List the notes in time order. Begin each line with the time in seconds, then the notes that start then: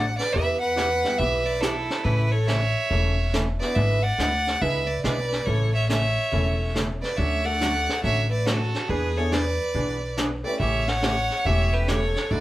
Already playing: A1 F#5
0.18 B4 D5, snare
0.33 E2 E3 B3 E4 G4 B4 E5, brush sweep, kick
0.60 B4 F#5
0.76 E3 B3 E4 G4, snare, hi-hat pedal
1.04 G3 B3 E4 G4, snare
1.18 B1 E3 B3 E4 G4 B4 E5, brush sweep, kick
1.46 B4 D5
1.61 E3 B3 E4 G4 A4, snare, hi-hat pedal
1.90 snare
2.04 A1 C#3 E3 A3 C#4 E4 A4 B4, brush sweep, kick
2.32 A4 C#5
2.47 C#3 E3 A3 C#4 A4 C#5 E5, snare, hi-hat pedal
2.90 E1 C#3 E3 A3 C#4 E4 A4, brush sweep, kick
3.33 C#3 E3 A3 C#4 A4, snare, hi-hat pedal
3.60 B3 D4 E4 F#4 B4 D5, snare
3.76 G#1 D3 G#3 B3 E4 G#4 B4 E5, brush sweep, kick
4.03 D5 F#5
4.18 D2 D3 G#3 B3 E4 G#4, snare, hi-hat pedal
4.47 snare
4.61 C#2 D3 G#3 B3 E4 G#4 B4 E5, brush sweep, kick
4.87 B4 D5
5.04 B1 D3 G#3 B3 E4 G#4 B4 D5, snare, hi-hat pedal
5.32 snare
5.46 A1 C#3 E3 A3 C#4 A4 C#5, brush sweep, kick
5.74 C#5 E5
5.89 C#3 E3 A3 C#4 A4 C#5 E5, snare, hi-hat pedal
6.32 E1 C#3 E3 A3 C#4 E4 A4, brush sweep, kick
6.75 C#3 E3 A3 C#4 A4, snare, hi-hat pedal
7.02 B4 D5, snare
7.16 D2 D3 F#3 A3 C#4 F#4 C#5 E5, brush sweep, kick
7.44 A3 D4 F#4 A4 D5 F#5
7.60 D3 F#3 A3 C#4 F#4, snare, hi-hat pedal
7.89 snare
8.03 A1 D3 F#3 A3 C#4 F#4 C#5 E5, brush sweep, kick
8.30 B4 D5
8.46 D3 F#3 A3 C#4 F#4 A4, snare, hi-hat pedal
8.75 snare
8.88 E2 E3 B3 D4 G#4 B4, brush sweep, kick
9.16 B3 D4 E4 G#4 A4 C#5
9.31 E3 B3 D4 G#4 B4 D5, snare, hi-hat pedal
9.74 B1 E3 B3 D4 G#4, brush sweep, kick
10.17 E3 B3 D4 G#4, snare, hi-hat pedal
10.44 A3 C#4 E4 G4 B4 D5
10.59 A1 C#3 E3 A3 C#4 G4 C#5 E5, brush sweep, kick
10.87 C#5 F#5, snare
11.02 C#3 E3 A3 C#4 G4, snare, hi-hat pedal
11.30 snare
11.44 E1 C#3 E3 A3 C#4 E4 G4 C#5 E5, brush sweep, kick
11.73 G4 B4
11.87 C#3 E3 A3 C#4 G4 A4 C#5, snare, hi-hat pedal
12.16 snare
12.30 D2 D3 F#3 A3 E4 F#4 A4 D5, brush sweep, kick